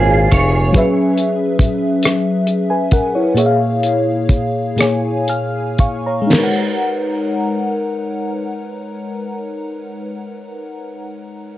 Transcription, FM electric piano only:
Already playing: A#2 A#3 G#4 C5 C#5 F5
0.72 F#3 C#4 G#4
0.76 B4 E5
2.70 B4 G#5
2.93 A#4 F#5
3.15 E4 C#5
3.35 A#2 A#3 G#4 C#5
3.40 E5
3.46 F5
4.76 A#2 A#3 G#4
4.80 C#5 G#5
5.29 G#5 F6
5.80 F5 C#6
6.06 C#5 A#5
6.21 G#3
6.27 D#4
6.32 A#4
6.38 B4
6.43 F#5

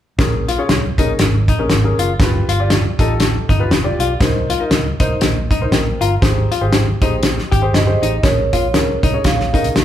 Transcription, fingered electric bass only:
0.19 A#1
0.69 C2
0.98 A#1
1.19 G#1
1.59 A#1
1.69 G#1
1.99 F#1
2.20 G1
2.48 G1
2.99 A1
3.49 G1
3.70 F1
3.99 B1
4.21 C2
4.71 C#2
5.00 C2
5.21 A#1
5.61 C2
5.71 A#1
6.01 G1
6.22 G#1
6.61 G#1
7.02 A#1
7.52 G#1
7.73 G1
8.02 A1
8.23 A#1
8.74 C#2
9.03 C2
9.25 A#1
9.64 C2
9.75 A#1

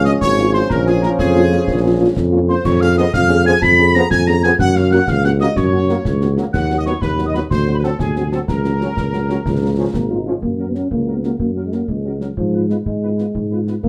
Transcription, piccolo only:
0.05 D#6
0.21 C#6
0.53 C6
0.69 A#5
0.86 G#5
1.02 A#5
1.18 G#5
2.49 C6
2.65 C#6
2.81 F6
2.98 D#6
3.14 F6
3.46 G#6
3.62 B6
3.95 A#6
4.11 G#6
4.27 A#6
4.43 G#6
4.60 F#6
4.76 F6
4.92 F#6
5.08 F6
5.25 F#6
5.40 D#6
5.57 C#6
6.53 F#6
6.78 D#6
6.86 C#6
7.01 B5
7.26 D#6
7.34 B5
7.50 C6
7.74 B5
7.83 A5
8.00 G#5
8.32 A5
8.48 A#5

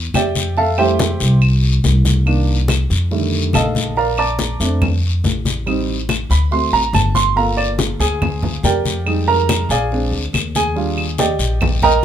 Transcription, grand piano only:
0.15 G4 D5 E5 G5
0.57 A4 E5 F5 A5
0.78 G3 A3 E4 G4 C5 E5 G5
2.26 D#3 A#3 D4
3.11 D3 D#3 G3 A3
3.55 A4 D#5 F5 A5
3.97 A#4 D5 F5 A#5
4.18 D5 A5 A#5 D6
4.60 A3 C4 D4
5.66 G3 C4 D#4
6.31 B5
6.51 A3 C4 F#4 C6
6.73 A#5
6.94 A5
7.15 C6
7.36 A#3 F4 A4 A#5
7.57 D5
8.00 G#4 G#5
8.65 G4 A#4 D5 G5
9.06 G3 G#3 D#4
9.28 A#4 A#5
9.71 G#4 D5 F5 G#5
9.91 G#3 C4 D4
10.56 G#4 G#5
10.76 G3 D4 F4
11.19 G4 D5 D#5 G5
11.83 A#4 D#5 G5 A#5

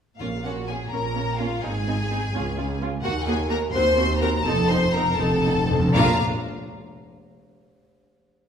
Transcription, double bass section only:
0.20 A#1
0.91 A#1
1.63 G#1
2.33 C#2
3.04 D#2
3.74 D#2
4.46 F1
5.20 F1
5.95 A#1

